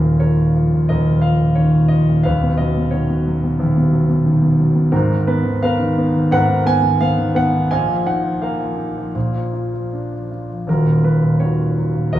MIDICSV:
0, 0, Header, 1, 2, 480
1, 0, Start_track
1, 0, Key_signature, -6, "minor"
1, 0, Tempo, 685714
1, 1582, Time_signature, 4, 2, 24, 8
1, 2057, Tempo, 666667
1, 3497, Tempo, 692841
1, 5417, Tempo, 722022
1, 6377, Tempo, 763359
1, 7337, Tempo, 728155
1, 8336, End_track
2, 0, Start_track
2, 0, Title_t, "Grand piano"
2, 0, Program_c, 0, 0
2, 0, Control_c, 0, 64, 127
2, 0, Note_on_c, 0, 27, 49
2, 0, Note_on_c, 0, 39, 54
2, 0, Note_on_c, 0, 46, 39
2, 0, Note_on_c, 0, 53, 41
2, 0, Note_on_c, 0, 63, 45
2, 0, Note_on_c, 0, 65, 44
2, 0, Note_on_c, 0, 68, 65
2, 0, Note_on_c, 0, 70, 55
2, 12, Note_off_c, 0, 46, 0
2, 12, Note_on_c, 0, 46, 41
2, 134, Note_on_c, 0, 51, 42
2, 136, Note_off_c, 0, 65, 0
2, 137, Note_off_c, 0, 70, 0
2, 138, Note_on_c, 0, 73, 71
2, 146, Note_on_c, 0, 65, 50
2, 148, Note_on_c, 0, 70, 46
2, 249, Note_off_c, 0, 46, 0
2, 259, Note_on_c, 0, 46, 40
2, 372, Note_off_c, 0, 53, 0
2, 382, Note_on_c, 0, 53, 45
2, 497, Note_off_c, 0, 46, 0
2, 508, Note_on_c, 0, 46, 39
2, 604, Note_off_c, 0, 63, 0
2, 619, Note_off_c, 0, 70, 0
2, 620, Note_off_c, 0, 39, 0
2, 621, Note_off_c, 0, 27, 0
2, 622, Note_on_c, 0, 75, 80
2, 630, Note_on_c, 0, 39, 52
2, 630, Note_on_c, 0, 70, 60
2, 631, Note_on_c, 0, 27, 49
2, 641, Note_off_c, 0, 73, 0
2, 736, Note_off_c, 0, 46, 0
2, 746, Note_on_c, 0, 46, 40
2, 850, Note_on_c, 0, 77, 79
2, 857, Note_off_c, 0, 53, 0
2, 868, Note_on_c, 0, 53, 43
2, 870, Note_off_c, 0, 75, 0
2, 976, Note_off_c, 0, 46, 0
2, 986, Note_on_c, 0, 46, 44
2, 1072, Note_off_c, 0, 51, 0
2, 1078, Note_off_c, 0, 65, 0
2, 1088, Note_on_c, 0, 73, 72
2, 1102, Note_on_c, 0, 51, 47
2, 1103, Note_off_c, 0, 77, 0
2, 1212, Note_off_c, 0, 46, 0
2, 1222, Note_on_c, 0, 46, 43
2, 1318, Note_on_c, 0, 75, 76
2, 1331, Note_off_c, 0, 53, 0
2, 1341, Note_on_c, 0, 53, 46
2, 1342, Note_off_c, 0, 73, 0
2, 1452, Note_off_c, 0, 46, 0
2, 1462, Note_on_c, 0, 46, 45
2, 1555, Note_off_c, 0, 39, 0
2, 1555, Note_off_c, 0, 70, 0
2, 1556, Note_off_c, 0, 27, 0
2, 1564, Note_on_c, 0, 77, 87
2, 1567, Note_off_c, 0, 51, 0
2, 1575, Note_off_c, 0, 53, 0
2, 1575, Note_on_c, 0, 71, 63
2, 1577, Note_on_c, 0, 27, 56
2, 1578, Note_off_c, 0, 75, 0
2, 1579, Note_off_c, 0, 46, 0
2, 1579, Note_on_c, 0, 73, 59
2, 1580, Note_on_c, 0, 39, 59
2, 1591, Control_c, 0, 64, 0
2, 1593, Note_off_c, 0, 68, 0
2, 1701, Note_on_c, 0, 47, 49
2, 1729, Control_c, 0, 64, 127
2, 1802, Note_on_c, 0, 75, 73
2, 1819, Note_off_c, 0, 77, 0
2, 1821, Note_on_c, 0, 54, 45
2, 1928, Note_off_c, 0, 47, 0
2, 1938, Note_on_c, 0, 47, 47
2, 2025, Note_off_c, 0, 73, 0
2, 2030, Note_off_c, 0, 75, 0
2, 2036, Note_on_c, 0, 73, 67
2, 2047, Note_on_c, 0, 66, 49
2, 2052, Note_on_c, 0, 51, 43
2, 2161, Note_off_c, 0, 47, 0
2, 2172, Note_on_c, 0, 47, 43
2, 2284, Note_off_c, 0, 54, 0
2, 2295, Note_on_c, 0, 54, 52
2, 2406, Note_off_c, 0, 47, 0
2, 2416, Note_on_c, 0, 47, 46
2, 2506, Note_off_c, 0, 71, 0
2, 2517, Note_off_c, 0, 27, 0
2, 2518, Note_off_c, 0, 39, 0
2, 2528, Note_on_c, 0, 27, 58
2, 2529, Note_on_c, 0, 39, 62
2, 2644, Note_off_c, 0, 47, 0
2, 2655, Note_on_c, 0, 47, 46
2, 2738, Note_off_c, 0, 73, 0
2, 2759, Note_off_c, 0, 54, 0
2, 2770, Note_on_c, 0, 54, 49
2, 2877, Note_off_c, 0, 47, 0
2, 2888, Note_on_c, 0, 47, 49
2, 2980, Note_off_c, 0, 66, 0
2, 2982, Note_off_c, 0, 51, 0
2, 3004, Note_on_c, 0, 51, 56
2, 3111, Note_off_c, 0, 47, 0
2, 3122, Note_on_c, 0, 47, 47
2, 3236, Note_off_c, 0, 54, 0
2, 3247, Note_on_c, 0, 54, 52
2, 3354, Note_off_c, 0, 47, 0
2, 3364, Note_on_c, 0, 47, 52
2, 3462, Note_off_c, 0, 27, 0
2, 3462, Note_off_c, 0, 39, 0
2, 3476, Note_off_c, 0, 51, 0
2, 3483, Note_on_c, 0, 32, 64
2, 3483, Note_on_c, 0, 70, 75
2, 3486, Note_off_c, 0, 54, 0
2, 3486, Note_on_c, 0, 44, 68
2, 3488, Note_off_c, 0, 47, 0
2, 3501, Note_on_c, 0, 63, 56
2, 3506, Control_c, 0, 64, 0
2, 3610, Control_c, 0, 64, 127
2, 3611, Note_on_c, 0, 51, 51
2, 3729, Note_on_c, 0, 59, 56
2, 3729, Note_on_c, 0, 71, 74
2, 3737, Note_off_c, 0, 70, 0
2, 3836, Note_off_c, 0, 51, 0
2, 3846, Note_on_c, 0, 51, 54
2, 3963, Note_off_c, 0, 59, 0
2, 3971, Note_off_c, 0, 71, 0
2, 3973, Note_on_c, 0, 59, 53
2, 3973, Note_on_c, 0, 77, 92
2, 3982, Note_on_c, 0, 71, 66
2, 3983, Note_on_c, 0, 70, 67
2, 4080, Note_off_c, 0, 51, 0
2, 4091, Note_on_c, 0, 51, 58
2, 4205, Note_off_c, 0, 59, 0
2, 4215, Note_on_c, 0, 59, 55
2, 4321, Note_off_c, 0, 51, 0
2, 4331, Note_on_c, 0, 51, 51
2, 4431, Note_off_c, 0, 63, 0
2, 4439, Note_off_c, 0, 44, 0
2, 4440, Note_off_c, 0, 32, 0
2, 4449, Note_on_c, 0, 44, 71
2, 4450, Note_on_c, 0, 32, 58
2, 4451, Note_off_c, 0, 70, 0
2, 4453, Note_off_c, 0, 71, 0
2, 4455, Note_on_c, 0, 78, 112
2, 4461, Note_on_c, 0, 70, 75
2, 4463, Note_on_c, 0, 71, 81
2, 4468, Note_off_c, 0, 77, 0
2, 4554, Note_off_c, 0, 51, 0
2, 4564, Note_on_c, 0, 51, 53
2, 4679, Note_off_c, 0, 59, 0
2, 4690, Note_on_c, 0, 59, 59
2, 4694, Note_on_c, 0, 80, 107
2, 4699, Note_off_c, 0, 78, 0
2, 4794, Note_off_c, 0, 51, 0
2, 4804, Note_on_c, 0, 51, 57
2, 4920, Note_off_c, 0, 59, 0
2, 4930, Note_on_c, 0, 59, 60
2, 4930, Note_on_c, 0, 77, 100
2, 4939, Note_off_c, 0, 80, 0
2, 5043, Note_off_c, 0, 51, 0
2, 5053, Note_on_c, 0, 51, 50
2, 5158, Note_off_c, 0, 59, 0
2, 5168, Note_on_c, 0, 59, 59
2, 5176, Note_on_c, 0, 78, 100
2, 5178, Note_off_c, 0, 77, 0
2, 5288, Note_off_c, 0, 51, 0
2, 5299, Note_on_c, 0, 51, 50
2, 5384, Note_off_c, 0, 44, 0
2, 5385, Note_off_c, 0, 32, 0
2, 5390, Note_off_c, 0, 70, 0
2, 5391, Note_off_c, 0, 71, 0
2, 5400, Note_off_c, 0, 78, 0
2, 5406, Note_off_c, 0, 59, 0
2, 5414, Note_off_c, 0, 51, 0
2, 5416, Note_on_c, 0, 80, 92
2, 5419, Note_on_c, 0, 34, 65
2, 5420, Note_on_c, 0, 46, 63
2, 5422, Note_on_c, 0, 75, 64
2, 5423, Note_on_c, 0, 77, 67
2, 5426, Control_c, 0, 64, 0
2, 5537, Note_on_c, 0, 53, 47
2, 5548, Control_c, 0, 64, 127
2, 5635, Note_off_c, 0, 80, 0
2, 5650, Note_on_c, 0, 63, 54
2, 5654, Note_on_c, 0, 78, 81
2, 5757, Note_off_c, 0, 53, 0
2, 5767, Note_on_c, 0, 53, 51
2, 5878, Note_off_c, 0, 77, 0
2, 5887, Note_on_c, 0, 58, 50
2, 5888, Note_on_c, 0, 77, 74
2, 5895, Note_off_c, 0, 78, 0
2, 5895, Note_on_c, 0, 70, 50
2, 5995, Note_off_c, 0, 53, 0
2, 6005, Note_on_c, 0, 53, 44
2, 6110, Note_off_c, 0, 63, 0
2, 6120, Note_on_c, 0, 63, 50
2, 6242, Note_off_c, 0, 53, 0
2, 6252, Note_on_c, 0, 53, 45
2, 6351, Note_off_c, 0, 34, 0
2, 6352, Note_off_c, 0, 46, 0
2, 6353, Note_off_c, 0, 75, 0
2, 6361, Note_off_c, 0, 58, 0
2, 6365, Note_off_c, 0, 63, 0
2, 6373, Note_off_c, 0, 53, 0
2, 6374, Note_on_c, 0, 34, 50
2, 6374, Note_on_c, 0, 46, 54
2, 6385, Control_c, 0, 64, 0
2, 6476, Control_c, 0, 64, 127
2, 6492, Note_on_c, 0, 53, 41
2, 6593, Note_off_c, 0, 77, 0
2, 6597, Note_off_c, 0, 70, 0
2, 6616, Note_on_c, 0, 65, 41
2, 6735, Note_off_c, 0, 53, 0
2, 6744, Note_on_c, 0, 53, 40
2, 6863, Note_on_c, 0, 62, 40
2, 6980, Note_off_c, 0, 53, 0
2, 6989, Note_on_c, 0, 53, 33
2, 7094, Note_off_c, 0, 65, 0
2, 7103, Note_on_c, 0, 65, 39
2, 7208, Note_off_c, 0, 53, 0
2, 7218, Note_on_c, 0, 53, 34
2, 7310, Note_off_c, 0, 34, 0
2, 7310, Note_off_c, 0, 46, 0
2, 7322, Note_off_c, 0, 62, 0
2, 7328, Note_off_c, 0, 65, 0
2, 7330, Note_off_c, 0, 53, 0
2, 7331, Note_on_c, 0, 27, 56
2, 7331, Note_on_c, 0, 39, 51
2, 7343, Note_on_c, 0, 66, 46
2, 7344, Note_on_c, 0, 65, 44
2, 7344, Note_on_c, 0, 70, 68
2, 7345, Control_c, 0, 64, 0
2, 7440, Control_c, 0, 64, 127
2, 7452, Note_on_c, 0, 46, 41
2, 7569, Note_on_c, 0, 54, 45
2, 7577, Note_on_c, 0, 71, 61
2, 7584, Note_off_c, 0, 70, 0
2, 7685, Note_off_c, 0, 46, 0
2, 7695, Note_on_c, 0, 46, 45
2, 7808, Note_off_c, 0, 65, 0
2, 7810, Note_on_c, 0, 73, 67
2, 7811, Note_on_c, 0, 51, 41
2, 7812, Note_off_c, 0, 66, 0
2, 7818, Note_on_c, 0, 65, 47
2, 7822, Note_on_c, 0, 66, 49
2, 7825, Note_off_c, 0, 71, 0
2, 7929, Note_off_c, 0, 46, 0
2, 7939, Note_on_c, 0, 46, 42
2, 8047, Note_off_c, 0, 54, 0
2, 8057, Note_on_c, 0, 54, 50
2, 8166, Note_off_c, 0, 46, 0
2, 8176, Note_on_c, 0, 46, 44
2, 8282, Note_off_c, 0, 27, 0
2, 8284, Note_off_c, 0, 39, 0
2, 8290, Note_on_c, 0, 75, 91
2, 8292, Note_on_c, 0, 27, 52
2, 8294, Note_off_c, 0, 66, 0
2, 8294, Note_on_c, 0, 39, 56
2, 8304, Note_on_c, 0, 66, 62
2, 8306, Note_on_c, 0, 70, 65
2, 8308, Note_off_c, 0, 73, 0
2, 8336, Note_off_c, 0, 27, 0
2, 8336, Note_off_c, 0, 39, 0
2, 8336, Note_off_c, 0, 46, 0
2, 8336, Note_off_c, 0, 51, 0
2, 8336, Note_off_c, 0, 54, 0
2, 8336, Note_off_c, 0, 65, 0
2, 8336, Note_off_c, 0, 66, 0
2, 8336, Note_off_c, 0, 70, 0
2, 8336, Note_off_c, 0, 75, 0
2, 8336, End_track
0, 0, End_of_file